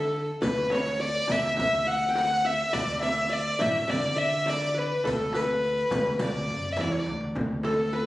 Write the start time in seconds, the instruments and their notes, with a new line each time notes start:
Already playing: upright bass D3, violin A4, qanun A4 F#5
0.29 darbuka ka
0.42 upright bass D2, qanun B4, violin B4, riq, frame drum, darbuka dum
0.57 darbuka ka
0.70 qanun C#5, riq, darbuka tek, frame drum
0.74 violin C#5
1.00 qanun D5, violin D5
1.28 upright bass D2, violin E5, riq, frame drum, darbuka dum
1.46 riq
1.57 upright bass D2, qanun E5, violin E5, riq, frame drum, darbuka dum
1.75 riq
1.87 qanun F#5, violin F#5, darbuka ka
2.09 qanun G5
2.15 qanun F#5, violin F#5, riq, darbuka tek, frame drum
2.45 qanun E5, violin E5
2.73 upright bass D2, qanun D5, violin D5, riq, frame drum, darbuka dum
2.88 darbuka ka
3.02 qanun E5, violin E5, riq, darbuka tek, frame drum
3.29 qanun D5, violin D5
3.59 upright bass A1, qanun E5, violin E5, riq, frame drum, darbuka dum
3.76 riq
3.88 upright bass D3, qanun D5, violin D5, riq, frame drum, darbuka dum
4.06 riq
4.16 qanun E5, violin E5, darbuka ka
4.46 qanun D5, violin D5, riq, darbuka tek, frame drum
4.74 qanun B4, violin B4
4.92 darbuka ka
5.04 upright bass D2, qanun A4, violin A4, riq, frame drum, darbuka dum
5.22 riq
5.33 qanun B4, violin B4, riq, darbuka tek, frame drum
5.63 riq, darbuka ka
5.78 riq
5.90 upright bass D2, riq, darbuka dum, frame drum
6.06 riq, darbuka ka
6.19 upright bass D2, qanun D5, riq, darbuka dum, frame drum
6.24 violin D5
6.34 riq
6.49 upright bass F#2, darbuka ka
6.72 violin E5
6.77 upright bass E2, violin D5, riq, darbuka tek, frame drum
6.91 violin C#5, darbuka ka
7.00 violin D5
7.06 upright bass D2, darbuka tek
7.21 darbuka ka
7.35 upright bass D2, frame drum, darbuka dum
7.49 darbuka ka
7.63 qanun A4, violin A4, darbuka tek, frame drum
7.93 qanun B4, violin B4